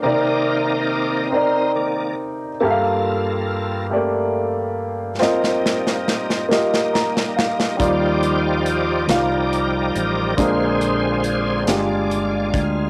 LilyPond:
<<
  \new Staff \with { instrumentName = "Grand piano" } { \time 6/8 \key bes \major \tempo 4. = 46 <c' ees' bes' d''>4. <c' ees' bes' d''>4. | <bes g' a' e'' f''>4. <a bes g' a' d''>4. | <c' f' bes' ees''>4. <bes f' g' ees''>4. | <g ees' f' d''>4. <f g ees' f' f''>4. |
<aes d' f' bes'>4. <aes d' f' g'>4. | }
  \new Staff \with { instrumentName = "Grand piano" } { \clef bass \time 6/8 \key bes \major c4. r4. | g,4. r4. | r2 bes''8 f''8 | ees4. r4. |
bes,4. r4. | }
  \new Staff \with { instrumentName = "Tonewheel organ" } { \time 6/8 \key bes \major << { bes'2 r4 | r2. | r2. | d''4. bes'4. |
c''4. d''4 r8 | } \\ { <c' ees'>2 r4 | r2. | r2. | <f' g'>4. <g' d''>4. |
<f' aes'>4. <aes f'>4. | } >> }
  \new Staff \with { instrumentName = "Tonewheel organ" } { \time 6/8 \key bes \major <ees bes d''>4. r8 <ees bes d''>8 r8 | <bes f' a'>4. r4. | <g bes ees'>4. <g bes ees'>4. | <f g ees'>2. |
<d aes c'>4. r4. | }
  \new Staff \with { instrumentName = "Fingered electric bass" } { \clef bass \time 6/8 \key bes \major r2. | r2. | r2. | ees,4. c,4 a,,8 |
bes,,4. g,,4 d,8 | }
  \new DrumStaff \with { instrumentName = "Drums" } \drummode { \time 6/8 r4. r4. | r4. r4. | sn16 sn16 sn16 sn16 sn16 sn16 sn16 sn16 sn16 sn16 sn16 sn16 | <hh bd>8 hh8 hh8 <hh sn>8 hh8 hh8 |
<hh bd>8 hh8 hh8 <hh sn>8 hh8 <hh bd>8 | }
>>